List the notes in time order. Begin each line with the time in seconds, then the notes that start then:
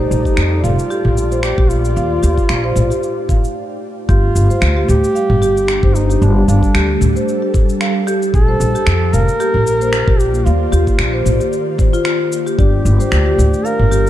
Already playing: A#2 A3 D#4 G4 A4 D5 A5
0.11 A#1, shaker
0.25 G4, kick, shaker
0.37 F2, finger snap, shaker
0.57 F4
0.63 F1 F4 F5, mid tom, shaker
0.79 C5 D5, shaker
0.90 G4, shaker
1.05 A#1, mid tom
1.17 shaker
1.32 C5, shaker
1.42 G4, finger snap, shaker
1.58 A#1 G4, kick
1.69 F4, shaker
1.85 shaker
1.96 D#2 D#4 F5, shaker
2.23 D#2 G4, shaker
2.38 kick, shaker
2.49 A#1, finger snap, shaker
2.64 C5
2.76 A#1, mid tom, shaker
2.90 G4, shaker
3.03 shaker
3.29 F5, kick, mid tom, shaker
3.44 shaker
4.09 G1 G3 F4 G4, kick, shaker
4.35 G1, shaker
4.50 C5, shaker
4.54 D4
4.62 D2, finger snap, shaker
4.77 G4
4.88 D2 G4, mid tom, shaker
4.94 A4
5.04 shaker
5.15 F5, shaker
5.30 G1, mid tom
5.42 G4, shaker
5.57 shaker
5.68 finger snap, shaker
5.83 G1 C5, kick
5.96 D#4, shaker
6.10 G4, shaker
6.22 G1 D4, shaker
6.48 G1 D4 F5, shaker
6.63 kick, shaker
6.75 D2 G4, finger snap, shaker
7.01 D2, mid tom, shaker
7.16 C5, shaker
7.28 shaker
7.42 G4
7.54 kick, mid tom, shaker
7.69 shaker
7.81 F5, finger snap, shaker
8.07 G4, shaker
8.22 shaker
8.34 A#1 A#3 A4, kick, shaker
8.48 C5
8.60 A#1, shaker
8.75 G4, shaker
8.82 F4
8.87 F2, finger snap, shaker
9.13 F1 A#4 F5, mid tom, shaker
9.29 C5 D5, shaker
9.40 G4, shaker
9.54 A#1, mid tom
9.67 shaker
9.81 C5, shaker
9.93 finger snap, shaker
10.08 A#1 G4, kick
10.19 G4, shaker
10.35 shaker
10.46 D#2 D#3 F4 F5, shaker
10.72 D#2 F4 G4, shaker
10.87 kick, shaker
10.99 A#1, finger snap, shaker
11.14 C5
11.25 A#1, mid tom, shaker
11.40 G4, shaker
11.53 shaker
11.78 C5, kick, mid tom, shaker
11.93 F4, shaker
12.05 F4, finger snap, shaker
12.32 shaker
12.46 G4, shaker
12.58 G1 G3 D4 G4 D5, kick, shaker
12.85 G1, shaker
12.97 D4 C5, shaker
13.12 D2, finger snap, shaker
13.26 G4
13.38 D2, mid tom, shaker
13.54 shaker
13.61 A5
13.65 A#4 F5, shaker
13.79 G1, mid tom
13.91 G4, shaker